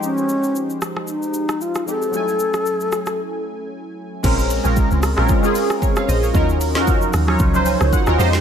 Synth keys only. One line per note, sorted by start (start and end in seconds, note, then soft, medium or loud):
0.00 1.82 F3 medium
0.00 1.83 G#3 medium
0.00 1.84 D#4 medium
0.00 1.85 G4 medium
0.00 1.83 C5 medium
1.86 2.13 F3 soft
1.86 2.13 G#3 soft
1.86 2.14 C4 soft
1.86 2.14 D#4 soft
1.86 2.14 G4 medium
2.11 4.19 F#3 medium
2.11 4.20 A3 medium
2.11 4.20 C#4 medium
2.15 4.21 E4 medium
2.15 4.22 G#5 medium
4.23 4.56 G#3 medium
4.23 4.56 C4 medium
4.23 4.56 C#4 medium
4.23 4.57 F4 medium
4.23 4.57 A#4 loud
4.64 5.05 G#3 medium
4.64 5.06 C4 medium
4.64 5.06 C#4 medium
4.64 5.06 F4 medium
4.64 5.07 A#4 loud
5.16 5.37 G#3 medium
5.16 5.38 C4 medium
5.16 5.38 C#4 medium
5.16 5.38 F4 medium
5.16 5.39 A#4 loud
5.43 5.84 G#3 medium
5.43 5.85 C4 medium
5.43 5.85 C#4 medium
5.43 5.85 F4 medium
5.43 5.86 G#4 loud
5.82 5.96 A#4 medium
5.82 5.96 C#5 medium
5.97 6.08 C#5 medium
5.97 6.08 F5 medium
6.09 6.23 C5 medium
6.09 6.22 D#5 medium
6.23 6.35 A#4 medium
6.23 6.48 C#5 medium
6.33 6.66 F#3 medium
6.33 6.67 C#4 medium
6.33 6.67 D#4 medium
6.33 6.67 F4 medium
6.33 6.68 A#4 loud
6.74 6.81 F3 medium
6.74 7.16 C#4 medium
6.74 7.17 D#4 medium
6.74 7.17 F4 medium
6.74 7.17 A#4 loud
6.81 7.19 F#4 medium
7.27 7.48 F#3 loud
7.27 7.48 C#4 medium
7.27 7.49 D#4 medium
7.27 7.49 F4 medium
7.27 7.49 C#5 loud
7.53 7.95 F#3 medium
7.53 7.95 C#4 medium
7.53 7.96 D#4 medium
7.53 7.96 F4 medium
7.53 7.96 C5 loud
7.67 7.91 G#5 medium
7.93 8.17 F#5 medium
8.06 8.18 F#3 medium
8.06 8.19 C#4 medium
8.06 8.17 D#4 medium
8.06 8.18 F4 medium
8.06 8.20 A#4 loud
8.18 8.41 G#3 loud
8.18 8.41 D#4 medium
8.18 8.41 F4 medium
8.18 8.41 G4 medium
8.18 8.41 C5 loud
8.18 8.41 D#5 medium